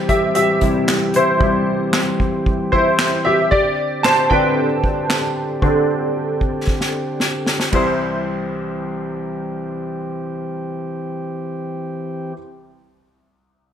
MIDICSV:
0, 0, Header, 1, 4, 480
1, 0, Start_track
1, 0, Key_signature, 0, "major"
1, 0, Tempo, 526316
1, 1284, Time_signature, 4, 2, 24, 8
1, 12524, End_track
2, 0, Start_track
2, 0, Title_t, "Grand piano"
2, 0, Program_c, 0, 0
2, 0, Control_c, 0, 64, 127
2, 0, Note_on_c, 0, 48, 50
2, 0, Note_on_c, 0, 55, 43
2, 0, Note_on_c, 0, 64, 54
2, 0, Note_on_c, 0, 67, 73
2, 0, Note_on_c, 0, 76, 91
2, 80, Note_off_c, 0, 76, 0
2, 80, Note_on_c, 0, 76, 71
2, 86, Note_off_c, 0, 67, 0
2, 86, Note_on_c, 0, 67, 57
2, 306, Note_off_c, 0, 76, 0
2, 308, Note_off_c, 0, 67, 0
2, 320, Note_on_c, 0, 76, 78
2, 328, Note_on_c, 0, 67, 54
2, 558, Note_off_c, 0, 48, 0
2, 558, Note_on_c, 0, 48, 42
2, 564, Note_off_c, 0, 55, 0
2, 564, Note_on_c, 0, 55, 39
2, 567, Note_off_c, 0, 64, 0
2, 567, Note_on_c, 0, 64, 46
2, 768, Note_off_c, 0, 76, 0
2, 773, Note_off_c, 0, 67, 0
2, 777, Note_off_c, 0, 48, 0
2, 780, Note_off_c, 0, 55, 0
2, 782, Note_off_c, 0, 64, 0
2, 1058, Note_on_c, 0, 64, 57
2, 1058, Note_on_c, 0, 72, 73
2, 1278, Note_off_c, 0, 64, 0
2, 1282, Note_on_c, 0, 48, 47
2, 1285, Note_on_c, 0, 55, 43
2, 1291, Note_on_c, 0, 64, 51
2, 2467, Note_off_c, 0, 72, 0
2, 2479, Note_off_c, 0, 64, 0
2, 2481, Note_on_c, 0, 72, 75
2, 2492, Note_on_c, 0, 64, 59
2, 2935, Note_off_c, 0, 64, 0
2, 2961, Note_on_c, 0, 76, 79
2, 2975, Note_on_c, 0, 67, 63
2, 2977, Note_off_c, 0, 72, 0
2, 3166, Note_off_c, 0, 48, 0
2, 3168, Note_off_c, 0, 55, 0
2, 3186, Note_off_c, 0, 76, 0
2, 3193, Note_off_c, 0, 67, 0
2, 3201, Note_on_c, 0, 74, 81
2, 3214, Note_on_c, 0, 67, 67
2, 3215, Control_c, 0, 64, 0
2, 3378, Control_c, 0, 64, 127
2, 3656, Note_off_c, 0, 67, 0
2, 3678, Note_on_c, 0, 81, 84
2, 3693, Note_on_c, 0, 72, 65
2, 3697, Note_off_c, 0, 74, 0
2, 3733, Note_off_c, 0, 81, 0
2, 3746, Note_off_c, 0, 72, 0
2, 3919, Note_on_c, 0, 79, 75
2, 3924, Note_on_c, 0, 50, 43
2, 3929, Note_on_c, 0, 60, 39
2, 3935, Note_on_c, 0, 71, 57
2, 3936, Note_on_c, 0, 62, 51
2, 4243, Note_off_c, 0, 50, 0
2, 4246, Note_off_c, 0, 60, 0
2, 4249, Note_off_c, 0, 62, 0
2, 5125, Note_on_c, 0, 50, 45
2, 5130, Note_on_c, 0, 60, 40
2, 5133, Note_on_c, 0, 62, 47
2, 5341, Note_off_c, 0, 50, 0
2, 5812, Note_off_c, 0, 60, 0
2, 5813, Note_off_c, 0, 62, 0
2, 6525, Note_off_c, 0, 79, 0
2, 6533, Note_off_c, 0, 71, 0
2, 7036, Note_on_c, 0, 55, 60
2, 7050, Note_on_c, 0, 64, 54
2, 7053, Note_on_c, 0, 36, 57
2, 7057, Control_c, 0, 64, 0
2, 7071, Note_on_c, 0, 72, 68
2, 7243, Control_c, 0, 64, 127
2, 11237, Note_off_c, 0, 55, 0
2, 11251, Note_off_c, 0, 64, 0
2, 11254, Note_off_c, 0, 36, 0
2, 11272, Note_off_c, 0, 72, 0
2, 12524, End_track
3, 0, Start_track
3, 0, Title_t, "Pipe organ"
3, 0, Program_c, 1, 19
3, 0, Note_on_c, 1, 52, 56
3, 0, Note_on_c, 1, 60, 54
3, 0, Note_on_c, 1, 67, 64
3, 3171, Note_off_c, 1, 52, 0
3, 3211, Note_on_c, 1, 50, 57
3, 7011, Note_off_c, 1, 50, 0
3, 7012, Note_off_c, 1, 60, 0
3, 7014, Note_off_c, 1, 67, 0
3, 7040, Note_on_c, 1, 52, 46
3, 7041, Note_on_c, 1, 67, 54
3, 7042, Note_on_c, 1, 60, 43
3, 11241, Note_off_c, 1, 52, 0
3, 11242, Note_off_c, 1, 67, 0
3, 11243, Note_off_c, 1, 60, 0
3, 12524, End_track
4, 0, Start_track
4, 0, Title_t, "Drums"
4, 82, Note_on_c, 9, 42, 60
4, 83, Note_on_c, 9, 36, 73
4, 173, Note_off_c, 9, 42, 0
4, 174, Note_off_c, 9, 36, 0
4, 320, Note_on_c, 9, 42, 79
4, 411, Note_off_c, 9, 42, 0
4, 558, Note_on_c, 9, 42, 61
4, 565, Note_on_c, 9, 36, 68
4, 650, Note_off_c, 9, 42, 0
4, 656, Note_off_c, 9, 36, 0
4, 801, Note_on_c, 9, 42, 66
4, 804, Note_on_c, 9, 38, 98
4, 809, Note_on_c, 9, 39, 79
4, 892, Note_off_c, 9, 42, 0
4, 895, Note_off_c, 9, 38, 0
4, 900, Note_off_c, 9, 39, 0
4, 1039, Note_on_c, 9, 42, 64
4, 1130, Note_off_c, 9, 42, 0
4, 1282, Note_on_c, 9, 36, 101
4, 1374, Note_off_c, 9, 36, 0
4, 1760, Note_on_c, 9, 38, 82
4, 1766, Note_on_c, 9, 39, 67
4, 1852, Note_off_c, 9, 38, 0
4, 1857, Note_off_c, 9, 39, 0
4, 2005, Note_on_c, 9, 36, 69
4, 2097, Note_off_c, 9, 36, 0
4, 2247, Note_on_c, 9, 36, 78
4, 2338, Note_off_c, 9, 36, 0
4, 2488, Note_on_c, 9, 36, 68
4, 2580, Note_off_c, 9, 36, 0
4, 2724, Note_on_c, 9, 38, 89
4, 2730, Note_on_c, 9, 39, 76
4, 2815, Note_off_c, 9, 38, 0
4, 2821, Note_off_c, 9, 39, 0
4, 3210, Note_on_c, 9, 36, 94
4, 3301, Note_off_c, 9, 36, 0
4, 3689, Note_on_c, 9, 38, 80
4, 3694, Note_on_c, 9, 39, 66
4, 3780, Note_off_c, 9, 38, 0
4, 3785, Note_off_c, 9, 39, 0
4, 3929, Note_on_c, 9, 36, 66
4, 4020, Note_off_c, 9, 36, 0
4, 4411, Note_on_c, 9, 36, 70
4, 4502, Note_off_c, 9, 36, 0
4, 4650, Note_on_c, 9, 38, 85
4, 4655, Note_on_c, 9, 39, 68
4, 4741, Note_off_c, 9, 38, 0
4, 4746, Note_off_c, 9, 39, 0
4, 5128, Note_on_c, 9, 36, 81
4, 5220, Note_off_c, 9, 36, 0
4, 5847, Note_on_c, 9, 36, 63
4, 5939, Note_off_c, 9, 36, 0
4, 6088, Note_on_c, 9, 36, 69
4, 6088, Note_on_c, 9, 38, 41
4, 6179, Note_off_c, 9, 36, 0
4, 6179, Note_off_c, 9, 38, 0
4, 6209, Note_on_c, 9, 38, 40
4, 6300, Note_off_c, 9, 38, 0
4, 6566, Note_on_c, 9, 38, 60
4, 6658, Note_off_c, 9, 38, 0
4, 6807, Note_on_c, 9, 38, 72
4, 6899, Note_off_c, 9, 38, 0
4, 6928, Note_on_c, 9, 38, 61
4, 7020, Note_off_c, 9, 38, 0
4, 7047, Note_on_c, 9, 51, 63
4, 7048, Note_on_c, 9, 36, 71
4, 7138, Note_off_c, 9, 51, 0
4, 7140, Note_off_c, 9, 36, 0
4, 12524, End_track
0, 0, End_of_file